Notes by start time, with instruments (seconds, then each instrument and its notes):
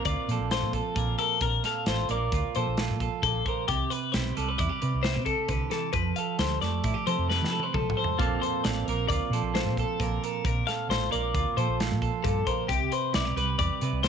Already playing: clean electric guitar A#2 A#3 C4 A#4
0.05 fretless electric bass D2, clean electric guitar F4 D5, kick, closed hi-hat
0.28 fretless electric bass A#2, clean electric guitar F3 A4, closed hi-hat
0.39 fretless electric bass A#1
0.51 clean electric guitar F4 C5, snare, closed hi-hat
0.62 fretless electric bass A#2
0.73 clean electric guitar A4, kick, closed hi-hat
0.95 fretless electric bass A#1, clean electric guitar A#2 A#4, kick, closed hi-hat
1.18 clean electric guitar A4 A#4, closed hi-hat
1.41 fretless electric bass A#1, clean electric guitar A#2 A#4, kick, closed hi-hat
1.64 clean electric guitar A4 F5, snare, closed hi-hat
1.86 fretless electric bass A1, clean electric guitar F4 C5, snare, closed hi-hat
2.09 fretless electric bass A#1, clean electric guitar A#3 A#4 D5, closed hi-hat
2.32 fretless electric bass D2, clean electric guitar F4, kick, closed hi-hat
2.55 fretless electric bass A#2, clean electric guitar F3 A4 C5, closed hi-hat
2.67 fretless electric bass A#1
2.77 clean electric guitar F4, snare, closed hi-hat
2.90 fretless electric bass A#2
3.00 clean electric guitar A4, kick, closed hi-hat
3.22 fretless electric bass A#1, clean electric guitar A#2 A4, kick, closed hi-hat
3.45 clean electric guitar A#4 C5, kick, closed hi-hat
3.68 fretless electric bass C2, clean electric guitar C3 G4, kick, closed hi-hat
3.90 clean electric guitar B4, closed hi-hat
4.12 fretless electric bass B1, clean electric guitar G4 C5, snare, closed hi-hat
4.35 fretless electric bass C2, clean electric guitar G3 A4 B4, closed hi-hat
4.48 clean electric guitar B4
4.58 fretless electric bass E2, clean electric guitar E4 D5, kick, closed hi-hat
4.69 clean electric guitar G4
4.81 clean electric guitar C3 B4, fretless electric bass C3, closed hi-hat
4.94 fretless electric bass C2
5.03 clean electric guitar E4 C5, snare, closed hi-hat
5.14 fretless electric bass C3, clean electric guitar G4
5.26 clean electric guitar A4, kick, closed hi-hat
5.48 fretless electric bass C2, clean electric guitar D3 B4, kick, closed hi-hat
5.70 clean electric guitar E3 A4, snare, closed hi-hat
5.93 fretless electric bass F2, clean electric guitar F3 B4, kick, closed hi-hat
6.16 clean electric guitar A4 F5, closed hi-hat
6.39 fretless electric bass D2, clean electric guitar G4 C5, snare, closed hi-hat
6.62 fretless electric bass F2, clean electric guitar A3 A4 D5, snare, closed hi-hat
6.84 fretless electric bass A2, clean electric guitar E4, kick, closed hi-hat
6.94 clean electric guitar G4
7.07 clean electric guitar C3 A4 C5, fretless electric bass F3, closed hi-hat
7.18 fretless electric bass F2
7.30 clean electric guitar G4 B4, snare
7.42 fretless electric bass F3, snare
7.51 clean electric guitar A4
7.60 clean electric guitar C5, high tom
7.73 fretless electric bass B1, clean electric guitar F3 A4, kick, mid tom
7.90 mid tom
7.97 clean electric guitar A4 C5
8.04 floor tom
8.18 fretless electric bass A#1, clean electric guitar A#2 A#3 C4 F4 A4, kick, closed hi-hat
8.42 clean electric guitar A4 C5, closed hi-hat
8.64 fretless electric bass A1, clean electric guitar F4 D5, snare, closed hi-hat
8.86 fretless electric bass A#1, clean electric guitar A#3 A#4, closed hi-hat
9.09 fretless electric bass D2, clean electric guitar F4 D5, kick, closed hi-hat
9.30 fretless electric bass A#2, clean electric guitar F3 A4, closed hi-hat
9.42 fretless electric bass A#1
9.55 clean electric guitar F4 C5, snare, closed hi-hat
9.65 fretless electric bass A#2
9.77 clean electric guitar A4, kick, closed hi-hat
9.99 fretless electric bass A#1, clean electric guitar A#2 A#4, kick, closed hi-hat
10.23 clean electric guitar A4 A#4, closed hi-hat
10.44 fretless electric bass A#1, clean electric guitar A#2 A#4, kick, closed hi-hat
10.67 clean electric guitar A4 F5, snare, closed hi-hat
10.89 fretless electric bass A1, clean electric guitar F4 C5, snare, closed hi-hat
11.11 fretless electric bass A#1, clean electric guitar A#3 A#4 D5, closed hi-hat
11.34 fretless electric bass D2, clean electric guitar F4, kick, closed hi-hat
11.57 fretless electric bass A#2, clean electric guitar F3 A4 C5, closed hi-hat
11.68 fretless electric bass A#1
11.80 clean electric guitar F4, snare, closed hi-hat
11.92 fretless electric bass A#2
12.02 clean electric guitar A4, kick, closed hi-hat
12.24 fretless electric bass G2, clean electric guitar A#2 A4, kick, closed hi-hat
12.47 clean electric guitar A#4 C5, kick, closed hi-hat
12.68 fretless electric bass C2, clean electric guitar C3 G4, kick, closed hi-hat
12.92 clean electric guitar B4 C5, closed hi-hat
13.13 fretless electric bass B1, clean electric guitar E4 D5, snare, closed hi-hat
13.25 clean electric guitar G4
13.36 fretless electric bass C2, clean electric guitar G3 B4, closed hi-hat
13.58 fretless electric bass E2, clean electric guitar G4 D5, kick, closed hi-hat
13.81 clean electric guitar C3 B4, fretless electric bass C3, closed hi-hat
13.93 fretless electric bass C2
14.03 clean electric guitar G4 C5, snare, closed hi-hat